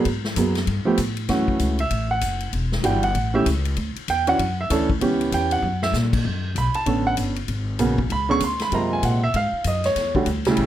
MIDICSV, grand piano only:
0, 0, Header, 1, 2, 480
1, 0, Start_track
1, 0, Tempo, 309598
1, 78, Time_signature, 4, 2, 24, 8
1, 16527, End_track
2, 0, Start_track
2, 0, Title_t, "Grand piano"
2, 0, Program_c, 0, 0
2, 567, Note_on_c, 0, 54, 64
2, 573, Note_on_c, 0, 58, 58
2, 577, Note_on_c, 0, 59, 56
2, 586, Note_on_c, 0, 68, 67
2, 828, Note_off_c, 0, 54, 0
2, 831, Note_off_c, 0, 58, 0
2, 833, Note_off_c, 0, 59, 0
2, 838, Note_off_c, 0, 68, 0
2, 1321, Note_on_c, 0, 53, 75
2, 1334, Note_on_c, 0, 59, 75
2, 1335, Note_on_c, 0, 57, 76
2, 1345, Note_on_c, 0, 67, 81
2, 1495, Note_off_c, 0, 53, 0
2, 1502, Note_off_c, 0, 57, 0
2, 1502, Note_off_c, 0, 59, 0
2, 1507, Note_off_c, 0, 67, 0
2, 1993, Note_on_c, 0, 52, 64
2, 2000, Note_on_c, 0, 57, 64
2, 2007, Note_on_c, 0, 61, 61
2, 2008, Note_on_c, 0, 66, 78
2, 2715, Note_off_c, 0, 52, 0
2, 2718, Note_off_c, 0, 57, 0
2, 2722, Note_off_c, 0, 61, 0
2, 2722, Note_off_c, 0, 66, 0
2, 2796, Note_on_c, 0, 76, 94
2, 3235, Note_off_c, 0, 76, 0
2, 3271, Note_on_c, 0, 78, 97
2, 3885, Note_off_c, 0, 78, 0
2, 4394, Note_on_c, 0, 52, 65
2, 4399, Note_on_c, 0, 55, 53
2, 4405, Note_on_c, 0, 62, 57
2, 4407, Note_on_c, 0, 66, 73
2, 4420, Note_on_c, 0, 79, 82
2, 4666, Note_off_c, 0, 52, 0
2, 4669, Note_off_c, 0, 55, 0
2, 4672, Note_off_c, 0, 62, 0
2, 4673, Note_off_c, 0, 66, 0
2, 4700, Note_off_c, 0, 79, 0
2, 4708, Note_on_c, 0, 78, 100
2, 5153, Note_off_c, 0, 78, 0
2, 5173, Note_on_c, 0, 52, 79
2, 5185, Note_on_c, 0, 57, 67
2, 5187, Note_on_c, 0, 61, 66
2, 5193, Note_on_c, 0, 76, 93
2, 5199, Note_on_c, 0, 67, 84
2, 5345, Note_off_c, 0, 52, 0
2, 5351, Note_off_c, 0, 57, 0
2, 5352, Note_off_c, 0, 61, 0
2, 5358, Note_off_c, 0, 67, 0
2, 5368, Note_off_c, 0, 76, 0
2, 6355, Note_on_c, 0, 79, 99
2, 6623, Note_on_c, 0, 52, 76
2, 6629, Note_off_c, 0, 79, 0
2, 6630, Note_on_c, 0, 61, 72
2, 6636, Note_on_c, 0, 62, 76
2, 6644, Note_on_c, 0, 66, 90
2, 6651, Note_on_c, 0, 78, 109
2, 6791, Note_off_c, 0, 52, 0
2, 6794, Note_off_c, 0, 61, 0
2, 6797, Note_off_c, 0, 62, 0
2, 6801, Note_off_c, 0, 66, 0
2, 7085, Note_off_c, 0, 78, 0
2, 7142, Note_on_c, 0, 76, 93
2, 7287, Note_on_c, 0, 52, 78
2, 7300, Note_on_c, 0, 61, 71
2, 7302, Note_on_c, 0, 62, 68
2, 7304, Note_off_c, 0, 76, 0
2, 7311, Note_on_c, 0, 69, 90
2, 7554, Note_off_c, 0, 52, 0
2, 7560, Note_off_c, 0, 61, 0
2, 7561, Note_off_c, 0, 62, 0
2, 7566, Note_off_c, 0, 69, 0
2, 7768, Note_on_c, 0, 52, 64
2, 7772, Note_on_c, 0, 59, 63
2, 7780, Note_on_c, 0, 61, 61
2, 7786, Note_on_c, 0, 67, 77
2, 8280, Note_on_c, 0, 79, 97
2, 8551, Note_off_c, 0, 79, 0
2, 8565, Note_on_c, 0, 78, 97
2, 8729, Note_off_c, 0, 52, 0
2, 8731, Note_off_c, 0, 59, 0
2, 8735, Note_off_c, 0, 61, 0
2, 8738, Note_off_c, 0, 67, 0
2, 9002, Note_off_c, 0, 78, 0
2, 9040, Note_on_c, 0, 76, 102
2, 9212, Note_off_c, 0, 76, 0
2, 10200, Note_on_c, 0, 83, 91
2, 10470, Note_on_c, 0, 81, 94
2, 10471, Note_off_c, 0, 83, 0
2, 10635, Note_on_c, 0, 50, 54
2, 10645, Note_on_c, 0, 59, 59
2, 10647, Note_on_c, 0, 61, 54
2, 10651, Note_on_c, 0, 69, 65
2, 10913, Note_off_c, 0, 81, 0
2, 10957, Note_on_c, 0, 78, 110
2, 11064, Note_off_c, 0, 78, 0
2, 11357, Note_off_c, 0, 50, 0
2, 11361, Note_off_c, 0, 59, 0
2, 11363, Note_off_c, 0, 61, 0
2, 11365, Note_off_c, 0, 69, 0
2, 12080, Note_on_c, 0, 49, 70
2, 12081, Note_on_c, 0, 58, 62
2, 12089, Note_on_c, 0, 59, 61
2, 12099, Note_on_c, 0, 66, 66
2, 12348, Note_off_c, 0, 49, 0
2, 12348, Note_off_c, 0, 58, 0
2, 12353, Note_off_c, 0, 59, 0
2, 12358, Note_off_c, 0, 66, 0
2, 12591, Note_on_c, 0, 83, 96
2, 12850, Note_on_c, 0, 50, 74
2, 12859, Note_on_c, 0, 59, 69
2, 12863, Note_on_c, 0, 61, 71
2, 12864, Note_off_c, 0, 83, 0
2, 12868, Note_on_c, 0, 68, 87
2, 12882, Note_on_c, 0, 85, 120
2, 13021, Note_off_c, 0, 50, 0
2, 13026, Note_off_c, 0, 59, 0
2, 13028, Note_off_c, 0, 61, 0
2, 13030, Note_off_c, 0, 68, 0
2, 13051, Note_off_c, 0, 85, 0
2, 13088, Note_on_c, 0, 84, 89
2, 13352, Note_off_c, 0, 84, 0
2, 13365, Note_on_c, 0, 83, 92
2, 13529, Note_on_c, 0, 48, 64
2, 13532, Note_off_c, 0, 83, 0
2, 13538, Note_on_c, 0, 56, 56
2, 13542, Note_on_c, 0, 58, 58
2, 13550, Note_on_c, 0, 65, 73
2, 13562, Note_on_c, 0, 82, 78
2, 13829, Note_off_c, 0, 82, 0
2, 13844, Note_on_c, 0, 80, 91
2, 14010, Note_off_c, 0, 80, 0
2, 14029, Note_on_c, 0, 78, 73
2, 14240, Note_off_c, 0, 48, 0
2, 14245, Note_off_c, 0, 56, 0
2, 14247, Note_off_c, 0, 58, 0
2, 14251, Note_off_c, 0, 65, 0
2, 14301, Note_off_c, 0, 78, 0
2, 14319, Note_on_c, 0, 76, 95
2, 14487, Note_off_c, 0, 76, 0
2, 14516, Note_on_c, 0, 77, 104
2, 14945, Note_off_c, 0, 77, 0
2, 15000, Note_on_c, 0, 75, 83
2, 15265, Note_off_c, 0, 75, 0
2, 15280, Note_on_c, 0, 73, 96
2, 15741, Note_on_c, 0, 50, 72
2, 15748, Note_on_c, 0, 55, 64
2, 15752, Note_on_c, 0, 57, 61
2, 15754, Note_on_c, 0, 66, 73
2, 15885, Note_off_c, 0, 73, 0
2, 15903, Note_off_c, 0, 50, 0
2, 15906, Note_off_c, 0, 55, 0
2, 15908, Note_off_c, 0, 57, 0
2, 15909, Note_off_c, 0, 66, 0
2, 16224, Note_on_c, 0, 49, 79
2, 16229, Note_on_c, 0, 55, 76
2, 16234, Note_on_c, 0, 57, 70
2, 16246, Note_on_c, 0, 64, 85
2, 16527, Note_off_c, 0, 49, 0
2, 16527, Note_off_c, 0, 55, 0
2, 16527, Note_off_c, 0, 57, 0
2, 16527, Note_off_c, 0, 64, 0
2, 16527, End_track
0, 0, End_of_file